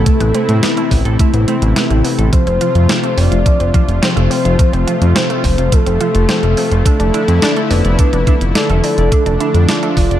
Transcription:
Already playing: C3 A3 E4 A4
0.06 A3 C4, kick, closed hi-hat
0.20 A1 B3, closed hi-hat
0.34 A3 C4, closed hi-hat
0.49 A2, closed hi-hat
0.63 A3 B3 E4, snare, closed hi-hat
0.77 A3 E4, closed hi-hat
0.91 A1 B3, kick, open hi-hat
1.05 A1 A4, closed hi-hat
1.19 A3 E4, kick, closed hi-hat
1.34 A1 B3, closed hi-hat
1.48 A3 C4, closed hi-hat
1.62 A1, closed hi-hat
1.76 A3 B3, snare, closed hi-hat
1.90 A1 A3 E4, closed hi-hat
2.04 B3, open hi-hat
2.18 A1 A4, closed hi-hat
2.32 F3 A3 F4 C5, kick, closed hi-hat
2.47 F1 C4, closed hi-hat
2.61 F3 F4, closed hi-hat
2.75 F2, closed hi-hat
2.89 F3 C4, snare, closed hi-hat
3.03 A3 C4, closed hi-hat
3.18 F1 C4 D5, open hi-hat
3.31 F1 F4, closed hi-hat
3.46 F3 A3, kick, closed hi-hat
3.60 F1 C4, closed hi-hat
3.74 F3 F4, kick, closed hi-hat
3.88 F1, closed hi-hat
4.02 F3 C4 C5, snare, closed hi-hat
4.16 F1 A3 C4, closed hi-hat
4.31 C4, open hi-hat
4.45 F1 F4, closed hi-hat
4.59 F3 A3, kick, closed hi-hat
4.73 F1 C4, closed hi-hat
4.87 F3 F4, closed hi-hat
5.01 F2, closed hi-hat
5.16 F3 C4 C5, snare, closed hi-hat
5.30 A3 C4, closed hi-hat
5.44 F1 C4, kick, open hi-hat
5.58 F1 F4, closed hi-hat
5.72 F3 A3 A4, kick, closed hi-hat
5.86 F1 C4, closed hi-hat
6.01 F3 F4, closed hi-hat
6.15 F1, closed hi-hat
6.29 F3 C4, snare, closed hi-hat
6.43 F1 A3 C4, closed hi-hat
6.57 C4, open hi-hat
6.71 F1 F4, closed hi-hat
6.86 D3 A3 D4 E4 A4, kick, closed hi-hat
7.00 F1 D4, closed hi-hat
7.14 D4 E4, closed hi-hat
7.28 F2, closed hi-hat
7.42 D4, snare, closed hi-hat
7.56 A3 A4, closed hi-hat
7.70 F1 D4 B4, open hi-hat
7.85 F1 D5, closed hi-hat
7.99 A3 D4, kick, closed hi-hat
8.13 F1 D4, closed hi-hat
8.27 D4 E4, kick, closed hi-hat
8.41 F1, closed hi-hat
8.55 D4 A4, snare, closed hi-hat
8.70 F1 A3 A4, closed hi-hat
8.84 D4, open hi-hat
8.98 F1 D5, closed hi-hat
9.12 A3 D4, kick, closed hi-hat
9.26 F1 D4, closed hi-hat
9.40 D4 E4, closed hi-hat
9.54 F2, closed hi-hat
9.68 D4 F4, snare, closed hi-hat
9.83 A3 A4, closed hi-hat
9.97 F1 D4, kick, open hi-hat
10.11 F1 D5, closed hi-hat

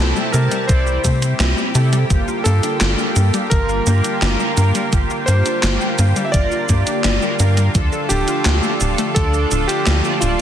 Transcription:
Already playing: C3 G3 C4 E4 G4 A4 A5
0.00 C2 C4
0.16 G3, cabasa
0.32 C3 A3 A#4, closed hi-hat, cabasa
0.51 G3, closed hi-hat, cabasa
0.68 C2 E3 C4 E4 C5 D5, kick, closed hi-hat, cabasa
0.87 E4, cabasa
1.04 C3 A3, kick, closed hi-hat, cabasa
1.22 C4, closed hi-hat, cabasa
1.40 C2 C4, snare, clap, closed hi-hat, cabasa
1.57 G3, cabasa
1.75 C3 A3 C4 E4 A4, closed hi-hat, cabasa
1.93 G3, closed hi-hat, cabasa
2.10 G1 D3 F3 A#3 F4 G4, kick, closed hi-hat, cabasa
2.28 F4, cabasa
2.44 G2 A#3 A4, closed hi-hat, cabasa
2.63 D4, closed hi-hat, cabasa
2.81 G1 D4, snare, clap, closed hi-hat, cabasa
2.99 G3, cabasa
3.16 G2 A#3, closed hi-hat, cabasa
3.34 G3, closed hi-hat, cabasa
3.50 G1 F3 A#3 F4 A#4, kick, closed hi-hat, cabasa
3.69 F4, cabasa
3.87 G2 A#3 F4 G4, closed hi-hat, cabasa
4.04 D4, closed hi-hat, cabasa
4.22 G1 D4, snare, clap, closed hi-hat, cabasa
4.40 G3 A#3 F4 A#4, cabasa
4.57 G2 A#3 F4 A#4, closed hi-hat, cabasa
4.75 G3, closed hi-hat, cabasa
4.93 G1 F3 A#3 F4 G4, kick, closed hi-hat, cabasa
5.10 F4, cabasa
5.26 G2 A#3 C5, closed hi-hat, cabasa
5.46 D4, closed hi-hat, cabasa
5.63 G1 D4, snare, clap, closed hi-hat, cabasa
5.81 G3, cabasa
5.99 G2 A#3, closed hi-hat, cabasa
6.16 G3, closed hi-hat, cabasa
6.25 E5
6.32 G1 F3 A#3 F4 A#4 D5, kick, closed hi-hat, cabasa
6.52 F4, cabasa
6.69 G2 A#3 F4 G4, kick, closed hi-hat, cabasa
6.87 D4, closed hi-hat, cabasa
7.04 G1 D4, snare, clap, closed hi-hat, cabasa
7.22 G3 A#3 F4 A#4, cabasa
7.40 G2 A#3 F4 A#4, closed hi-hat, cabasa
7.57 G3, closed hi-hat, cabasa
7.75 D2 F3 A3 D4 F4 A4, kick, closed hi-hat, cabasa
7.92 A4, cabasa
8.09 D1 D4 G4, closed hi-hat, cabasa
8.28 F4, closed hi-hat, cabasa
8.45 D2 F4, snare, clap, closed hi-hat, cabasa
8.63 A3, cabasa
8.81 D1 D4, closed hi-hat, cabasa
8.98 A3, closed hi-hat, cabasa
9.15 D2 F3 D4 F4 A4 D5, kick, closed hi-hat, cabasa
9.34 A4, cabasa
9.51 D1 D4 F4 A4, closed hi-hat, cabasa
9.68 F4 G4, closed hi-hat, cabasa
9.87 D2 F4, snare, clap, closed hi-hat, cabasa
10.04 A3 D4 F4 D5, cabasa
10.20 D1 D4 F4 D5, closed hi-hat, cabasa

